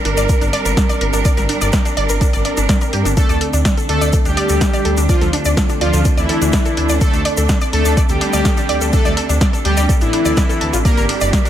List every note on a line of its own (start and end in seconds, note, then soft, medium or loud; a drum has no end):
0.00 3.13 G3 medium
0.00 10.84 C4 medium
0.00 3.13 D4 medium
0.00 10.85 D4 medium
0.00 3.13 A#4 medium
0.00 3.17 A#4 medium
0.05 0.14 G1 medium
0.05 0.14 D4 medium
0.05 open hi-hat medium
0.17 0.26 G1 medium
0.17 0.23 D5 loud
0.17 closed hi-hat soft
0.17 shaker medium
0.29 0.35 A#4 medium
0.29 kick loud
0.29 closed hi-hat medium
0.29 shaker medium
0.41 0.50 G1 medium
0.41 0.50 D4 medium
0.41 closed hi-hat soft
0.41 shaker soft
0.53 0.59 D5 loud
0.53 open hi-hat loud
0.65 0.74 G1 medium
0.65 0.71 A#4 medium
0.65 closed hi-hat soft
0.65 shaker medium
0.77 0.86 D4 medium
0.77 kick loud
0.77 snare loud
0.77 closed hi-hat medium
0.77 shaker medium
0.89 0.95 D5 loud
0.89 closed hi-hat soft
0.89 shaker soft
1.01 1.10 G1 loud
1.01 1.07 A#4 medium
1.01 open hi-hat medium
1.13 1.22 G1 medium
1.13 1.22 D4 medium
1.13 closed hi-hat soft
1.13 shaker medium
1.25 1.31 D5 loud
1.25 kick loud
1.25 closed hi-hat medium
1.25 shaker medium
1.37 1.46 G1 medium
1.37 1.43 A#4 medium
1.37 snare soft
1.37 closed hi-hat soft
1.37 shaker soft
1.49 1.58 D4 medium
1.49 open hi-hat loud
1.61 1.70 G1 medium
1.61 1.67 D5 loud
1.61 closed hi-hat soft
1.61 shaker medium
1.72 1.79 A#4 medium
1.72 kick loud
1.72 snare loud
1.72 closed hi-hat medium
1.72 shaker medium
1.85 1.94 D4 medium
1.85 closed hi-hat soft
1.85 shaker soft
1.97 2.06 G1 medium
1.97 2.03 D5 loud
1.97 open hi-hat medium
2.09 2.18 G1 medium
2.09 2.15 A#4 medium
2.09 closed hi-hat soft
2.09 shaker medium
2.21 2.30 D4 medium
2.21 kick loud
2.21 closed hi-hat medium
2.21 shaker medium
2.33 2.42 G1 medium
2.33 2.39 D5 loud
2.33 closed hi-hat soft
2.33 shaker soft
2.45 2.51 D5 medium
2.45 open hi-hat loud
2.57 2.66 G1 medium
2.57 2.61 D4 medium
2.57 closed hi-hat soft
2.57 shaker medium
2.69 2.75 D5 medium
2.69 kick loud
2.69 snare loud
2.69 closed hi-hat medium
2.69 shaker medium
2.81 2.90 A#4 medium
2.81 closed hi-hat soft
2.81 shaker soft
2.93 3.02 G2 medium
2.93 2.99 G4 medium
2.93 open hi-hat medium
3.05 3.14 G1 medium
3.05 3.11 D4 medium
3.05 closed hi-hat soft
3.05 shaker medium
3.17 10.81 D3 medium
3.17 3.37 A3 loud
3.17 10.81 A3 medium
3.17 3.26 D4 medium
3.17 10.81 D4 medium
3.17 3.37 A4 loud
3.17 kick loud
3.17 closed hi-hat medium
3.17 shaker medium
3.29 3.38 D2 medium
3.29 3.35 D5 loud
3.29 closed hi-hat soft
3.29 shaker soft
3.41 3.47 A4 medium
3.41 open hi-hat loud
3.53 3.62 D2 medium
3.53 3.62 D4 medium
3.53 closed hi-hat soft
3.53 shaker medium
3.65 3.71 D5 loud
3.65 kick loud
3.65 snare loud
3.65 closed hi-hat medium
3.65 shaker medium
3.77 10.85 A4 medium
3.77 3.83 A4 medium
3.77 closed hi-hat soft
3.77 shaker soft
3.89 3.98 D2 loud
3.89 4.09 A3 medium
3.89 3.98 D4 medium
3.89 4.09 A4 loud
3.89 open hi-hat loud
4.01 4.10 D2 medium
4.01 4.07 D5 loud
4.01 closed hi-hat soft
4.01 shaker medium
4.12 4.19 A4 medium
4.12 kick loud
4.12 closed hi-hat medium
4.12 shaker medium
4.25 4.34 D2 medium
4.25 5.00 G3 loud
4.25 4.34 D4 medium
4.25 5.00 G4 loud
4.25 closed hi-hat soft
4.25 shaker soft
4.37 4.43 D5 loud
4.37 open hi-hat loud
4.49 4.58 D2 medium
4.49 4.55 A4 medium
4.49 closed hi-hat soft
4.49 shaker medium
4.61 4.70 D4 medium
4.61 kick loud
4.61 snare loud
4.61 closed hi-hat medium
4.61 shaker medium
4.73 4.79 D5 loud
4.73 closed hi-hat soft
4.73 shaker soft
4.85 4.94 D2 loud
4.85 4.91 A4 medium
4.85 open hi-hat medium
4.97 5.06 D2 medium
4.97 5.06 D4 medium
4.97 closed hi-hat soft
4.97 shaker medium
5.09 5.29 F3 loud
5.09 5.29 F4 loud
5.09 5.15 D5 loud
5.09 kick loud
5.09 closed hi-hat medium
5.09 shaker medium
5.21 5.30 D2 medium
5.21 5.27 A4 medium
5.21 snare soft
5.21 closed hi-hat soft
5.21 shaker soft
5.33 5.42 D4 medium
5.33 open hi-hat loud
5.45 5.54 D2 medium
5.45 5.51 D5 loud
5.45 closed hi-hat soft
5.45 shaker medium
5.57 5.63 A4 medium
5.57 kick loud
5.57 snare loud
5.57 closed hi-hat medium
5.57 shaker medium
5.69 5.78 D4 medium
5.69 closed hi-hat soft
5.69 shaker soft
5.81 5.90 D2 loud
5.81 6.01 F3 loud
5.81 6.01 F4 loud
5.81 5.87 D5 loud
5.81 open hi-hat loud
5.93 6.02 D2 medium
5.93 5.99 A4 medium
5.93 closed hi-hat soft
5.93 shaker medium
6.05 6.14 D4 medium
6.05 kick loud
6.05 closed hi-hat medium
6.05 shaker medium
6.17 6.26 D2 medium
6.17 6.92 E3 loud
6.17 6.92 E4 loud
6.17 6.23 D5 loud
6.17 closed hi-hat soft
6.17 shaker soft
6.29 6.35 A4 medium
6.29 open hi-hat loud
6.41 6.50 D2 medium
6.41 6.50 D4 medium
6.41 closed hi-hat soft
6.41 shaker medium
6.52 6.59 D5 loud
6.52 kick loud
6.52 snare loud
6.52 closed hi-hat medium
6.52 shaker medium
6.65 6.71 A4 medium
6.65 closed hi-hat soft
6.65 shaker soft
6.77 6.86 D2 loud
6.77 6.86 D4 medium
6.77 open hi-hat medium
6.89 6.98 D2 medium
6.89 6.95 D5 loud
6.89 closed hi-hat soft
6.89 shaker medium
7.01 7.21 A3 loud
7.01 7.21 A4 loud
7.01 7.07 A4 medium
7.01 kick loud
7.01 closed hi-hat medium
7.01 shaker medium
7.13 7.22 D2 medium
7.13 7.22 D4 medium
7.13 closed hi-hat soft
7.13 shaker soft
7.25 7.31 D5 loud
7.25 open hi-hat loud
7.37 7.46 D2 medium
7.37 7.43 A4 medium
7.37 closed hi-hat soft
7.37 shaker medium
7.49 7.58 D4 medium
7.49 kick loud
7.49 snare loud
7.49 closed hi-hat medium
7.49 shaker medium
7.61 7.67 D5 loud
7.61 closed hi-hat soft
7.61 shaker soft
7.73 7.82 D2 loud
7.73 7.93 A3 loud
7.73 7.79 A4 medium
7.73 7.93 A4 loud
7.73 open hi-hat loud
7.85 7.94 D2 medium
7.85 7.94 D4 medium
7.85 closed hi-hat soft
7.85 shaker medium
7.97 8.03 D5 loud
7.97 kick loud
7.97 closed hi-hat medium
7.97 shaker medium
8.09 8.18 D2 medium
8.09 8.84 G3 loud
8.09 8.84 G4 loud
8.09 8.15 A4 medium
8.09 closed hi-hat soft
8.09 shaker soft
8.21 8.30 D4 medium
8.21 open hi-hat loud
8.33 8.42 D2 medium
8.33 8.39 D5 loud
8.33 closed hi-hat soft
8.33 shaker medium
8.45 8.51 A4 medium
8.45 kick loud
8.45 snare loud
8.45 closed hi-hat medium
8.45 shaker medium
8.57 8.65 D4 medium
8.57 closed hi-hat soft
8.57 shaker soft
8.69 8.78 D2 loud
8.69 8.75 D5 loud
8.69 open hi-hat loud
8.81 8.90 D2 medium
8.81 8.87 A4 medium
8.81 closed hi-hat soft
8.81 shaker medium
8.93 9.13 A3 loud
8.93 9.02 D4 medium
8.93 9.13 A4 loud
8.93 kick loud
8.93 closed hi-hat medium
8.93 shaker medium
9.05 9.14 D2 medium
9.05 9.11 D5 loud
9.05 snare soft
9.05 closed hi-hat soft
9.05 shaker soft
9.17 9.23 A4 medium
9.17 open hi-hat loud
9.29 9.38 D2 medium
9.29 9.37 D4 medium
9.29 closed hi-hat soft
9.29 shaker medium
9.41 9.47 D5 loud
9.41 kick loud
9.41 snare loud
9.41 closed hi-hat medium
9.41 shaker medium
9.53 9.59 A4 medium
9.53 closed hi-hat soft
9.53 shaker soft
9.65 9.74 D2 loud
9.65 9.85 G3 medium
9.65 9.74 D4 medium
9.65 9.85 G4 loud
9.65 open hi-hat loud
9.77 9.86 D2 medium
9.77 9.83 D5 loud
9.77 closed hi-hat soft
9.77 shaker medium
9.89 9.95 A4 medium
9.89 kick loud
9.89 closed hi-hat medium
9.89 shaker medium
10.01 10.10 A1 medium
10.01 10.76 E3 loud
10.01 10.09 D4 medium
10.01 10.76 E4 loud
10.01 closed hi-hat soft
10.01 shaker soft
10.13 10.22 D4 medium
10.13 open hi-hat loud
10.25 10.34 D2 medium
10.25 10.31 D5 loud
10.25 closed hi-hat soft
10.25 shaker medium
10.37 10.43 D5 medium
10.37 kick loud
10.37 snare loud
10.37 closed hi-hat medium
10.37 shaker medium
10.49 10.53 A4 medium
10.49 closed hi-hat soft
10.49 shaker soft
10.61 10.70 D2 loud
10.61 10.64 A5 medium
10.61 open hi-hat medium
10.73 10.82 A1 medium
10.73 10.77 F4 medium
10.73 closed hi-hat soft
10.73 shaker medium
10.85 11.50 G3 medium
10.85 11.05 A#3 loud
10.85 11.50 C4 medium
10.85 11.50 D4 medium
10.85 11.50 G4 medium
10.85 11.05 A#4 loud
10.85 10.91 D5 loud
10.85 kick loud
10.85 closed hi-hat medium
10.85 shaker medium
10.97 11.06 G1 medium
10.97 11.03 A#4 medium
10.97 closed hi-hat soft
10.97 shaker soft
11.03 11.50 F4 medium
11.09 11.18 D4 medium
11.09 open hi-hat loud
11.09 ride medium
11.21 11.30 G1 medium
11.21 11.27 D5 loud
11.21 closed hi-hat soft
11.21 shaker medium
11.33 11.39 A#4 medium
11.33 kick loud
11.33 snare loud
11.33 closed hi-hat medium
11.33 shaker medium
11.45 11.50 D4 medium
11.45 closed hi-hat soft
11.45 shaker soft